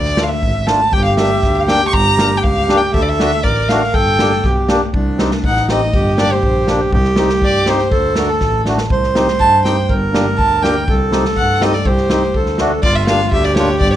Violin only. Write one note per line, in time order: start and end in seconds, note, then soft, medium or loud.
0.00 0.24 D5 medium
0.23 0.30 F5 medium
0.28 0.68 E5 medium
0.67 0.94 A5 medium
0.93 1.04 G5 loud
1.05 1.17 F5 medium
1.18 1.57 E5 medium
1.55 1.68 F5 medium
1.69 1.85 G5 medium
1.88 1.95 C#6 medium
1.93 2.39 A#5 loud
2.37 2.44 G5 medium
2.43 2.79 F5 loud
2.77 2.94 G5 medium
2.94 3.04 E5 medium
3.02 3.10 D5 medium
3.09 3.45 E5 loud
3.43 3.70 D5 medium
3.69 3.96 F5 medium
3.94 4.44 G5 medium
5.46 5.68 F#5 medium
5.70 6.15 D#5 medium
6.19 6.34 D5 medium
6.32 6.43 C5 medium
6.44 6.78 C5 medium
7.45 7.71 D5 medium
7.70 8.19 C5 medium
8.17 8.30 A#4 medium
8.28 8.41 A4 medium
8.41 8.76 A4 medium
9.40 9.63 A5 loud
9.65 9.87 G5 medium
10.37 10.64 A5 loud
10.62 10.87 G5 medium
11.37 11.63 F#5 medium
11.62 11.75 D#5 medium
11.74 11.88 D5 medium
11.87 12.60 C5 medium
12.83 12.96 D5 loud
12.95 13.07 E5 medium
13.07 13.30 F5 medium
13.32 13.46 E5 medium
13.45 13.56 D5 medium
13.57 13.79 C#5 medium
13.80 13.92 D5 loud
13.93 13.96 C#5 medium